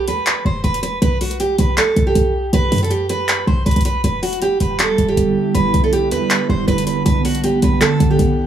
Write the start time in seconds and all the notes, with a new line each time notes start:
0.08 E2 B4, closed hi-hat
0.26 clap, closed hi-hat
0.45 E1 C5
0.64 E1 B4, closed hi-hat
0.74 closed hi-hat
0.83 B4, closed hi-hat
1.02 B1 B4, closed hi-hat
1.21 F#4, closed hi-hat, open hi-hat
1.31 closed hi-hat
1.40 G4, closed hi-hat
1.58 B1 B4, closed hi-hat
1.77 A4, clap, closed hi-hat
1.96 B1, closed hi-hat
2.07 G4
2.15 B1, closed hi-hat
2.53 B1 B4, closed hi-hat
2.72 F#2, closed hi-hat, open hi-hat
2.78 closed hi-hat
2.83 A4, closed hi-hat
2.90 G4, closed hi-hat
3.09 B4, closed hi-hat
3.28 clap, closed hi-hat
3.47 B1 C5
3.66 B1 B4, closed hi-hat
3.71 closed hi-hat
3.76 B1, closed hi-hat
3.81 closed hi-hat
3.85 B4, closed hi-hat
4.04 E1 D3 G3 B3 E4 B4, closed hi-hat
4.23 F#4, closed hi-hat, open hi-hat
4.33 closed hi-hat
4.42 G4, closed hi-hat
4.60 E1 B4, closed hi-hat
4.79 A4, clap, closed hi-hat
4.98 E1, closed hi-hat
5.08 G4
5.17 E1, closed hi-hat
5.54 E1 B4, closed hi-hat
5.74 B1, closed hi-hat
5.84 A4
5.93 G4, closed hi-hat
6.11 E2 B4, closed hi-hat
6.30 clap, closed hi-hat
6.49 E1 C5
6.68 E1 B4, closed hi-hat
6.78 closed hi-hat
6.87 B4, closed hi-hat
7.06 B1 B4 F#5, closed hi-hat
7.25 F#4, closed hi-hat, open hi-hat
7.35 closed hi-hat
7.44 G4, closed hi-hat
7.62 B1 B4, closed hi-hat
7.81 A4, clap, closed hi-hat
8.00 B1, closed hi-hat
8.11 G4
8.19 B1, closed hi-hat